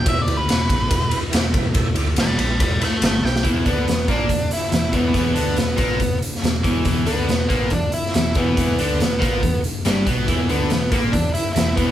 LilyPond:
<<
  \new Staff \with { instrumentName = "Tonewheel organ" } { \time 4/4 \key e \minor \tempo 4 = 141 <e' g' b'>8 <e' g' b'>8 <e' g' b'>8 <e' g' b'>8 <e' g' b'>8 <e' g' b'>8 <e' g' b'>8 <e' g' b'>8 | <e' g' a'>8 <e' g' d''>8 <e' g' b'>8 <e' g' b'>8 <e' g' b'>8 <e' g' b'>8 <e' g' b'>8 <e' g' b'>8 | r1 | r1 |
r1 | r1 | <e' g' b'>8 <e' g' b'>8 <e' g' b'>8 <e' g' b'>8 <e' g' b'>8 <e' g' b'>8 <e' g' b'>8 <e' g' b'>8 | }
  \new Staff \with { instrumentName = "Lead electric guitar" } { \time 4/4 \key e \minor \tuplet 3/2 { e''8 d''8 b'8~ } b'4. r4. | r4 <g'' b''>8 <g'' b''>8 <g'' b''>8 <e'' a''>8 <e'' a''>8 g''8 | r8 b4 d'4 e'8 e'8 b8~ | b2~ b8 r4. |
r8 b4. d'8 e'8 e'8 b8~ | b2~ b8 r4. | r8 b4 b8 d'8 e'8 e'8 b8 | }
  \new Staff \with { instrumentName = "Overdriven electric guitar" } { \clef bass \time 4/4 \key e \minor r1 | r1 | <e, e>8 <d d'>8 e,8 <ais, ais>8 e,8 r8 e,8 <e, e>8 | <e, e>8 <d d'>8 e,8 <ais, ais>8 e,8 r8 e,8 <e, e>8 |
<e, e>8 <d d'>8 e,8 <ais, ais>8 e,8 r8 e,8 <e, e>8 | <e, e>8 <d d'>8 e,8 <ais, ais>8 e,8 r8 <g, g>8 <b, b>8 | <e, e>8 <d d'>8 e,8 <ais, ais>8 e,8 r8 e,8 <e, e>8 | }
  \new Staff \with { instrumentName = "Picked electric bass" } { \clef bass \time 4/4 \key e \minor e,,8 d,8 e,,8 ais,,8 e,,8 r8 e,,8 e,,8 | e,,8 d,8 e,,8 ais,,8 e,,8 r8 g,,8 b,,8 | e,,8 d,8 e,,8 ais,,8 e,,8 r8 e,,8 e,,8 | e,,8 d,8 e,,8 ais,,8 e,,8 r8 e,,8 e,,8 |
e,,8 d,8 e,,8 ais,,8 e,,8 r8 e,,8 e,,8 | e,,8 d,8 e,,8 ais,,8 e,,8 r8 g,,8 b,,8 | e,,8 d,8 e,,8 ais,,8 e,,8 r8 e,,8 e,,8 | }
  \new DrumStaff \with { instrumentName = "Drums" } \drummode { \time 4/4 <bd cymr>8 cymr8 <cymr sn>8 <bd cymr>8 <bd cymr>8 cymr8 <cymr sn>8 <bd cymr>8 | <bd cymr>8 cymr8 <cymr sn>8 cymr8 <bd cymr>8 <cymr sn>8 <cymr sn>8 sn16 sn16 | <hh bd>8 <hh bd>8 <hh sn>8 <hh bd>8 <hh bd>8 <hh sn>8 <hh sn>8 <hh bd>8 | <hh bd>8 hh8 <hh sn>8 <hh bd>8 <hh bd>8 hh16 sn16 <hh sn>8 <hh bd>8 |
<hh bd>8 hh8 <hh sn>8 <hh bd>8 <hh bd>8 hh16 sn16 <hh sn>8 <hh bd>8 | <hh bd>8 hh8 <hh sn>8 <hh bd>8 <hh bd>8 hh8 <hh sn>8 <hh bd>8 | <hh bd>8 hh8 <hh sn>8 <hh bd>8 <hh bd>8 hh8 <hh sn>8 <hh bd>8 | }
>>